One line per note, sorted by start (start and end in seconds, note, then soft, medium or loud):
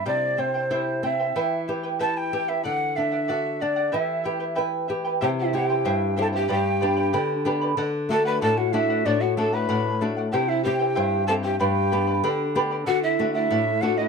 0.05 1.31 C3 medium
0.05 0.37 E4 medium
0.05 0.38 G4 medium
0.05 0.37 C5 medium
0.05 0.41 D5 medium
0.05 0.36 E5 medium
0.05 0.37 G5 medium
0.37 0.70 C4 soft
0.37 0.54 E4 medium
0.37 0.54 C5 medium
0.37 1.03 C5 medium
0.37 0.54 E5 soft
0.37 0.53 G5 medium
0.54 0.70 E4 soft
0.54 0.70 C5 soft
0.54 0.70 G5 soft
0.70 1.02 E4 medium
0.70 1.03 G4 medium
0.70 1.02 C5 medium
0.70 1.01 E5 medium
0.70 1.03 G5 medium
1.03 1.34 C4 medium
1.03 1.19 E4 medium
1.03 1.19 C5 medium
1.03 1.19 E5 soft
1.03 1.64 E5 medium
1.03 1.18 G5 medium
1.19 1.35 E4 soft
1.19 1.35 C5 soft
1.19 1.35 G5 soft
1.35 2.61 E3 medium
1.35 1.67 E4 medium
1.35 1.68 G4 medium
1.35 1.67 B4 medium
1.35 1.67 E5 medium
1.35 1.68 G5 medium
1.68 1.84 E4 medium
1.68 1.99 G4 soft
1.68 1.83 B4 medium
1.68 1.84 E5 medium
1.68 1.82 G5 medium
1.83 1.99 E4 soft
1.83 1.99 B4 soft
1.83 1.99 G5 soft
1.99 2.32 E4 medium
1.99 2.32 G4 medium
1.99 2.32 B4 medium
1.99 2.31 B4 medium
1.99 2.31 E5 medium
1.99 2.32 G5 medium
1.99 2.18 A5 loud
2.17 2.50 G5 medium
2.33 2.48 E4 medium
2.33 2.64 G4 medium
2.33 2.48 B4 medium
2.33 2.48 E5 medium
2.33 2.47 G5 medium
2.48 2.65 E4 soft
2.48 2.63 B4 soft
2.48 2.64 E5 medium
2.48 2.64 G5 soft
2.63 3.90 D3 medium
2.63 2.94 A4 medium
2.63 2.95 D5 medium
2.63 2.97 F#5 loud
2.63 2.96 F#5 medium
2.96 3.28 D4 medium
2.96 3.12 A4 soft
2.96 3.12 D5 medium
2.96 3.63 E5 medium
2.96 3.11 F#5 medium
3.12 3.27 D5 soft
3.12 3.28 F#5 soft
3.28 3.60 F#4 medium
3.28 3.59 A4 medium
3.28 3.60 D5 medium
3.28 3.60 F#5 medium
3.60 3.93 D4 medium
3.60 3.77 A4 soft
3.60 3.95 D5 medium
3.60 3.76 D5 medium
3.60 3.75 F#5 medium
3.76 3.92 D5 soft
3.76 3.92 F#5 soft
3.92 5.18 E3 medium
3.92 4.23 E4 medium
3.92 4.25 G4 medium
3.92 4.24 B4 medium
3.92 4.23 E5 medium
3.92 4.58 E5 medium
3.92 4.24 G5 medium
4.24 4.40 E4 medium
4.24 4.57 G4 soft
4.24 4.39 B4 medium
4.24 4.41 E5 medium
4.24 4.39 G5 medium
4.40 4.55 E4 soft
4.40 4.55 B4 soft
4.40 4.55 G5 soft
4.55 4.87 E4 medium
4.55 4.88 G4 medium
4.55 4.88 B4 medium
4.55 4.89 B4 medium
4.55 4.87 E5 medium
4.55 4.88 G5 medium
4.88 5.05 E4 medium
4.88 5.21 G4 medium
4.88 5.04 B4 medium
4.88 5.05 E5 medium
4.88 5.03 G5 medium
5.05 5.20 E4 soft
5.05 5.21 B4 soft
5.05 5.21 G5 soft
5.21 5.84 C3 medium
5.21 5.52 E4 medium
5.21 5.53 G4 medium
5.21 5.29 G4 medium
5.21 5.53 C5 medium
5.21 5.52 E5 medium
5.21 5.53 G5 medium
5.21 5.29 G5 medium
5.39 5.54 E4 medium
5.39 5.53 E5 medium
5.53 6.05 C4 soft
5.53 5.69 E4 medium
5.53 6.05 E4 soft
5.53 6.06 G4 medium
5.53 6.15 G4 medium
5.53 5.69 C5 medium
5.53 5.69 E5 medium
5.53 5.68 G5 medium
5.53 6.15 G5 medium
5.70 5.84 E4 soft
5.70 5.85 C5 soft
5.70 5.84 G5 soft
5.85 6.48 G2 medium
5.85 6.16 E4 medium
5.85 6.17 G4 medium
5.85 6.16 C5 medium
5.85 6.15 E5 medium
5.85 6.16 G5 medium
6.16 6.43 C4 medium
6.16 6.33 E4 medium
6.16 6.44 E4 soft
6.16 6.44 G4 medium
6.16 6.26 A4 medium
6.16 6.32 C5 medium
6.16 6.33 E5 medium
6.16 6.31 G5 medium
6.21 6.27 A5 loud
6.33 6.48 E4 soft
6.33 6.50 G4 medium
6.33 6.49 C5 soft
6.33 6.47 G5 soft
6.33 6.50 G5 medium
6.48 7.12 G2 medium
6.48 6.81 G4 medium
6.48 6.80 B4 medium
6.48 6.80 D5 medium
6.48 6.79 G5 medium
6.48 7.43 G5 medium
6.48 6.81 B5 medium
6.53 7.43 G4 medium
6.81 7.33 B3 soft
6.81 7.33 D4 soft
6.81 7.33 G4 medium
6.81 6.97 B4 medium
6.81 6.97 D5 medium
6.81 6.97 G5 medium
6.81 6.95 B5 medium
6.97 7.12 B4 soft
6.97 7.13 D5 soft
6.97 7.13 B5 soft
7.13 7.76 D3 medium
7.13 7.45 G4 medium
7.13 7.45 B4 medium
7.13 7.45 D5 medium
7.13 7.44 G5 medium
7.13 7.45 B5 medium
7.45 7.71 B3 medium
7.45 7.71 D4 soft
7.45 7.72 G4 medium
7.45 7.62 B4 medium
7.45 7.61 D5 medium
7.45 7.61 G5 medium
7.45 7.60 B5 medium
7.61 7.78 B4 soft
7.61 7.77 D5 soft
7.61 7.77 B5 medium
7.77 8.39 D3 medium
7.77 8.09 A4 medium
7.77 8.09 D5 medium
7.77 8.10 F#5 medium
8.09 8.60 A3 soft
8.09 8.61 D4 soft
8.09 8.61 F#4 medium
8.09 8.26 A4 medium
8.09 8.25 A4 medium
8.09 8.26 D5 medium
8.09 8.24 F#5 medium
8.09 8.25 A5 medium
8.25 8.41 B4 medium
8.25 8.41 D5 soft
8.25 8.41 F#5 soft
8.25 8.41 B5 medium
8.41 9.04 A2 medium
8.41 8.72 A4 medium
8.41 8.60 A4 medium
8.41 8.73 D5 medium
8.41 8.74 F#5 medium
8.41 8.59 A5 loud
8.57 8.75 F#4 medium
8.57 8.74 F#5 medium
8.72 9.24 A3 medium
8.72 9.25 D4 soft
8.72 9.06 E4 medium
8.72 9.25 F#4 medium
8.72 8.89 A4 medium
8.72 8.90 D5 medium
8.72 9.07 E5 medium
8.72 8.89 F#5 medium
8.90 9.05 D5 soft
8.90 9.06 F#5 soft
9.05 9.67 A2 medium
9.05 9.21 D4 medium
9.05 9.36 A4 medium
9.05 9.22 D5 medium
9.05 9.36 D5 medium
9.05 9.37 F#5 medium
9.20 9.37 F#4 medium
9.20 9.37 F#5 medium
9.37 9.88 A3 medium
9.37 9.88 D4 soft
9.37 9.89 F#4 medium
9.37 9.53 A4 medium
9.37 9.55 A4 medium
9.37 9.53 D5 medium
9.37 9.51 F#5 medium
9.37 9.55 A5 medium
9.53 10.01 B4 medium
9.53 9.68 D5 soft
9.53 9.69 F#5 soft
9.53 10.01 B5 medium
9.69 10.31 A2 medium
9.69 10.00 A4 medium
9.69 10.01 D5 medium
9.69 10.01 F#5 medium
10.01 10.26 A3 soft
10.01 10.27 D4 soft
10.01 10.27 F#4 medium
10.01 10.17 A4 medium
10.01 10.17 D5 medium
10.01 10.15 F#5 medium
10.17 10.33 D5 soft
10.17 10.33 F#5 soft
10.31 10.95 C3 medium
10.31 10.63 E4 medium
10.31 10.64 G4 medium
10.31 10.51 G4 medium
10.31 10.63 C5 medium
10.31 10.62 E5 medium
10.31 10.50 G5 medium
10.31 10.64 G5 medium
10.48 10.63 E4 medium
10.48 10.63 E5 medium
10.63 11.16 C4 soft
10.63 10.80 E4 medium
10.63 11.16 E4 soft
10.63 11.24 G4 medium
10.63 11.17 G4 medium
10.63 10.79 C5 medium
10.63 10.80 E5 medium
10.63 11.24 G5 medium
10.63 10.78 G5 medium
10.79 10.95 E4 soft
10.79 10.95 C5 soft
10.79 10.95 G5 medium
10.95 11.59 G2 medium
10.95 11.26 E4 medium
10.95 11.28 G4 medium
10.95 11.27 C5 medium
10.95 11.25 E5 medium
10.95 11.27 G5 medium
11.27 11.54 C4 soft
11.27 11.44 E4 medium
11.27 11.54 E4 soft
11.27 11.55 G4 medium
11.27 11.34 A4 medium
11.27 11.42 C5 medium
11.27 11.43 E5 medium
11.27 11.42 G5 medium
11.27 11.33 A5 loud
11.43 11.60 E4 soft
11.43 11.59 G4 medium
11.43 11.60 C5 soft
11.43 11.58 G5 medium
11.59 12.22 G2 medium
11.59 11.92 G4 medium
11.59 12.51 G4 medium
11.59 11.91 B4 medium
11.59 11.91 D5 medium
11.59 12.51 G5 medium
11.59 11.90 G5 medium
11.59 11.92 B5 medium
11.92 12.43 B3 soft
11.92 12.43 D4 soft
11.92 12.43 G4 medium
11.92 12.07 B4 medium
11.92 12.07 D5 medium
11.92 12.08 G5 medium
11.92 12.06 B5 medium
12.07 12.23 B4 soft
12.07 12.23 D5 soft
12.07 12.23 B5 soft
12.23 12.85 D3 medium
12.23 12.55 G4 medium
12.23 12.55 B4 medium
12.23 12.55 D5 medium
12.23 12.54 G5 medium
12.23 12.56 B5 medium
12.55 12.81 B3 medium
12.55 12.81 D4 soft
12.55 12.81 G4 medium
12.55 12.71 B4 medium
12.55 12.71 D5 medium
12.55 12.71 G5 medium
12.55 12.70 B5 medium
12.71 12.88 B4 soft
12.71 12.87 D5 soft
12.71 12.87 B5 soft
12.86 13.49 D3 medium
12.86 13.02 F#4 medium
12.86 13.18 A4 medium
12.86 13.19 D5 medium
12.86 13.01 F#5 loud
12.86 13.20 F#5 medium
13.03 13.33 E4 medium
13.03 13.32 E5 medium
13.19 13.70 A3 medium
13.19 13.70 D4 soft
13.19 13.70 F#4 medium
13.19 13.35 A4 medium
13.19 13.35 D5 medium
13.19 13.34 F#5 medium
13.33 13.85 E4 medium
13.33 13.50 D5 soft
13.33 13.82 E5 loud
13.33 13.51 F#5 soft
13.51 14.08 A2 medium
13.51 13.81 A4 medium
13.51 13.81 D5 medium
13.51 13.82 F#5 medium
13.81 14.08 A3 soft
13.81 14.08 D4 soft
13.81 14.08 F#4 medium
13.81 14.00 F#4 medium
13.81 13.98 A4 medium
13.81 13.97 D5 medium
13.81 13.98 F#5 loud
13.81 13.96 F#5 medium
13.97 14.08 E4 medium
13.97 14.08 D5 soft
13.97 14.08 D#5 medium
13.97 14.08 F#5 soft